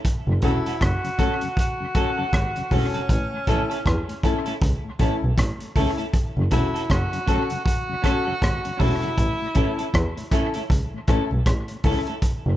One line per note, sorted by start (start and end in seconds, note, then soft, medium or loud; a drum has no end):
0.05 kick loud
0.05 closed hi-hat medium
0.28 0.36 F#1 medium
0.28 0.35 F#2 medium
0.28 0.34 C#3 medium
0.42 0.51 E1 medium
0.42 0.52 F#3 medium
0.42 0.53 A3 medium
0.42 0.62 C#4 loud
0.42 0.56 C#4 medium
0.42 0.53 C#4 medium
0.42 0.84 E4 loud
0.42 0.62 F#4 medium
0.42 0.57 F#4 medium
0.42 0.63 A4 loud
0.42 0.57 A4 medium
0.42 kick loud
0.42 closed hi-hat medium
0.66 0.74 C#4 medium
0.66 0.73 F#4 medium
0.66 0.73 A4 medium
0.66 closed hi-hat medium
0.81 0.90 F#1 loud
0.81 1.58 F#4 loud
0.81 kick loud
0.81 cross-stick loud
0.81 closed hi-hat medium
1.03 1.10 F#2 medium
1.03 1.10 C#3 medium
1.03 closed hi-hat soft
1.18 1.29 F#3 medium
1.18 1.29 A3 medium
1.18 1.32 C#4 medium
1.18 1.38 C#4 loud
1.18 1.29 C#4 medium
1.18 1.38 F#4 medium
1.18 1.32 F#4 medium
1.18 1.39 A4 loud
1.18 1.33 A4 medium
1.18 kick loud
1.18 closed hi-hat medium
1.41 1.48 F#2 medium
1.41 1.48 C#3 medium
1.41 closed hi-hat medium
1.57 2.75 F#4 loud
1.57 kick loud
1.57 closed hi-hat loud
1.80 1.87 F#2 medium
1.80 1.87 C#3 medium
1.95 2.05 F#3 medium
1.95 2.05 A3 medium
1.95 2.14 C#4 loud
1.95 2.08 C#4 medium
1.95 2.05 C#4 medium
1.95 2.15 F#4 medium
1.95 2.09 F#4 medium
1.95 2.15 A4 loud
1.95 2.09 A4 loud
1.95 kick medium
1.95 closed hi-hat medium
2.18 2.25 F#2 medium
2.18 2.25 C#3 medium
2.18 2.25 C#4 medium
2.18 2.25 F#4 medium
2.18 2.25 A4 medium
2.33 2.41 G#1 medium
2.33 kick loud
2.33 cross-stick loud
2.33 closed hi-hat medium
2.56 2.63 F#2 medium
2.56 2.63 C#3 medium
2.56 closed hi-hat medium
2.71 2.80 E1 loud
2.71 2.81 F#3 medium
2.71 2.81 A3 medium
2.71 2.91 C#4 medium
2.71 2.85 C#4 medium
2.71 2.81 C#4 medium
2.71 4.24 C#4 loud
2.71 2.91 F#4 medium
2.71 2.85 F#4 medium
2.71 2.91 A4 loud
2.71 2.85 A4 medium
2.71 kick medium
2.71 open hi-hat medium
2.94 3.01 F#2 medium
2.94 3.01 C#3 medium
2.94 3.02 C#4 medium
2.94 3.01 F#4 medium
2.94 3.01 A4 medium
2.94 closed hi-hat medium
3.09 3.18 A1 loud
3.09 kick loud
3.09 closed hi-hat medium
3.33 3.39 A2 medium
3.47 3.56 A1 medium
3.47 3.58 E3 medium
3.47 3.58 A3 medium
3.47 3.61 C#4 medium
3.47 3.67 C#4 medium
3.47 3.58 C#4 medium
3.47 3.61 E4 loud
3.47 3.67 E4 medium
3.47 3.67 A4 loud
3.47 3.62 A4 loud
3.47 kick loud
3.47 closed hi-hat medium
3.70 3.78 C#4 medium
3.70 3.77 E4 medium
3.70 3.77 A4 medium
3.70 closed hi-hat medium
3.86 3.94 E2 loud
3.86 kick loud
3.86 cross-stick loud
3.86 closed hi-hat medium
4.08 4.15 A2 medium
4.08 closed hi-hat medium
4.23 4.34 E3 medium
4.23 4.34 A3 medium
4.23 4.43 C#4 medium
4.23 4.37 C#4 medium
4.23 4.34 C#4 medium
4.23 4.37 E4 medium
4.23 4.43 E4 medium
4.23 4.38 A4 medium
4.23 4.44 A4 loud
4.23 kick medium
4.23 closed hi-hat medium
4.46 4.53 A2 medium
4.46 4.54 C#4 medium
4.46 4.54 E4 medium
4.46 4.53 A4 medium
4.46 closed hi-hat medium
4.62 4.70 C#2 medium
4.62 kick loud
4.62 closed hi-hat medium
4.85 4.91 A2 medium
4.99 5.08 A1 medium
4.99 5.09 E3 medium
4.99 5.09 A3 medium
4.99 5.19 C#4 medium
4.99 5.09 C#4 medium
4.99 5.13 C#4 medium
4.99 5.19 E4 medium
4.99 5.13 E4 medium
4.99 5.19 A4 loud
4.99 5.14 A4 loud
4.99 kick loud
4.99 closed hi-hat medium
5.22 5.31 B1 loud
5.22 5.29 A2 medium
5.38 5.46 A1 loud
5.38 kick loud
5.38 cross-stick loud
5.38 closed hi-hat loud
5.60 5.67 A2 medium
5.60 closed hi-hat soft
5.76 5.85 C#2 medium
5.76 5.86 E3 medium
5.76 5.86 A3 medium
5.76 5.89 C#4 medium
5.76 5.95 C#4 loud
5.76 5.86 C#4 medium
5.76 5.89 E4 medium
5.76 5.95 E4 medium
5.76 5.90 A4 loud
5.76 5.96 A4 medium
5.76 kick medium
5.76 open hi-hat medium
5.97 6.05 A2 medium
5.97 6.06 C#4 medium
5.97 6.05 E4 medium
5.97 6.05 A4 medium
5.97 closed hi-hat soft
6.13 kick loud
6.13 closed hi-hat medium
6.37 6.46 F#1 medium
6.37 6.43 F#2 medium
6.37 6.43 C#3 medium
6.51 6.60 E1 medium
6.51 6.62 F#3 medium
6.51 6.62 A3 medium
6.51 6.65 C#4 medium
6.51 6.71 C#4 medium
6.51 6.62 C#4 medium
6.51 6.92 E4 loud
6.51 6.71 F#4 medium
6.51 6.65 F#4 medium
6.51 6.72 A4 medium
6.51 6.66 A4 medium
6.51 kick loud
6.51 closed hi-hat medium
6.74 6.82 C#4 soft
6.74 6.82 F#4 medium
6.74 6.81 A4 medium
6.74 closed hi-hat medium
6.90 6.99 F#1 loud
6.90 7.64 F#4 loud
6.90 kick loud
6.90 cross-stick loud
6.90 closed hi-hat medium
7.13 7.19 F#2 medium
7.13 7.19 C#3 medium
7.13 closed hi-hat medium
7.26 7.38 F#3 medium
7.26 7.38 A3 medium
7.26 7.41 C#4 medium
7.26 7.47 C#4 medium
7.26 7.38 C#4 medium
7.26 7.41 F#4 medium
7.26 7.48 F#4 medium
7.26 7.42 A4 loud
7.26 7.48 A4 loud
7.26 kick medium
7.26 closed hi-hat medium
7.50 7.57 F#2 medium
7.50 7.57 C#3 medium
7.50 closed hi-hat medium
7.65 8.80 F#4 loud
7.65 kick loud
7.65 closed hi-hat loud
7.89 7.96 F#2 medium
7.89 7.96 C#3 medium
8.02 8.14 F#3 medium
8.02 8.14 A3 medium
8.02 8.17 C#4 medium
8.02 8.23 C#4 loud
8.02 8.14 C#4 medium
8.02 8.17 F#4 medium
8.02 8.23 F#4 medium
8.02 8.17 A4 loud
8.02 8.24 A4 loud
8.02 kick medium
8.02 cross-stick medium
8.02 closed hi-hat medium
8.25 8.34 F#2 medium
8.25 8.34 C#3 medium
8.25 8.34 C#4 medium
8.25 8.34 F#4 medium
8.25 8.33 A4 medium
8.42 8.51 G#1 medium
8.42 kick loud
8.42 cross-stick loud
8.42 closed hi-hat loud
8.65 8.72 F#2 medium
8.65 8.72 C#3 medium
8.65 closed hi-hat soft
8.77 8.89 E1 loud
8.77 8.92 C#4 medium
8.77 8.99 C#4 medium
8.77 10.32 E4 loud
8.77 8.93 F#4 medium
8.77 9.00 F#4 medium
8.77 8.93 A4 medium
8.77 9.00 A4 loud
8.77 kick loud
8.77 open hi-hat medium
8.81 8.91 F#3 medium
8.81 8.91 A3 medium
8.81 8.91 C#4 medium
9.00 9.10 F#2 medium
9.00 9.10 C#3 medium
9.00 9.10 C#4 soft
9.00 9.09 F#4 medium
9.00 9.09 A4 medium
9.00 closed hi-hat soft
9.18 9.26 A1 medium
9.18 kick loud
9.18 closed hi-hat medium
9.42 9.48 A2 medium
9.55 9.64 A1 medium
9.55 9.66 E3 medium
9.55 9.66 A3 medium
9.55 9.69 C#4 medium
9.55 9.75 C#4 medium
9.55 9.66 C#4 medium
9.55 9.75 E4 medium
9.55 9.70 E4 medium
9.55 9.70 A4 medium
9.55 9.76 A4 loud
9.55 kick medium
9.55 closed hi-hat medium
9.78 9.87 C#4 medium
9.78 9.86 E4 medium
9.78 9.86 A4 medium
9.78 closed hi-hat medium
9.94 10.03 E2 loud
9.94 kick loud
9.94 cross-stick loud
9.94 closed hi-hat medium
10.17 10.24 A2 medium
10.17 closed hi-hat medium
10.31 10.42 E3 medium
10.31 10.42 A3 medium
10.31 10.51 C#4 medium
10.31 10.46 C#4 medium
10.31 10.42 C#4 medium
10.31 10.52 E4 medium
10.31 10.46 E4 medium
10.31 10.52 A4 loud
10.31 10.46 A4 medium
10.31 kick loud
10.31 closed hi-hat medium
10.54 10.62 A2 medium
10.54 10.63 C#4 medium
10.54 10.62 E4 medium
10.54 10.62 A4 medium
10.54 closed hi-hat medium
10.70 10.79 C#2 medium
10.70 kick loud
10.70 closed hi-hat medium
10.94 11.00 A2 medium
11.08 11.17 A1 medium
11.08 11.19 E3 medium
11.08 11.19 A3 medium
11.08 11.28 C#4 medium
11.08 11.22 C#4 medium
11.08 11.19 C#4 medium
11.08 11.28 E4 medium
11.08 11.23 E4 medium
11.08 11.28 A4 loud
11.08 11.23 A4 medium
11.08 kick loud
11.08 cross-stick medium
11.08 closed hi-hat medium
11.32 11.40 B1 medium
11.32 11.39 A2 medium
11.46 11.55 A1 medium
11.46 kick loud
11.46 cross-stick loud
11.46 closed hi-hat loud
11.68 11.77 A2 medium
11.68 closed hi-hat medium
11.84 11.93 C#2 medium
11.84 11.95 E3 medium
11.84 11.95 A3 medium
11.84 12.04 C#4 medium
11.84 11.98 C#4 loud
11.84 11.95 C#4 medium
11.84 12.04 E4 medium
11.84 11.99 E4 medium
11.84 12.05 A4 loud
11.84 11.99 A4 loud
11.84 kick medium
11.84 open hi-hat medium
12.07 12.15 A2 medium
12.07 12.16 C#4 soft
12.07 12.15 E4 soft
12.07 12.15 A4 medium
12.07 closed hi-hat soft
12.22 kick loud
12.22 closed hi-hat loud
12.47 12.55 F#1 loud
12.47 12.53 F#2 medium
12.47 12.53 C#3 medium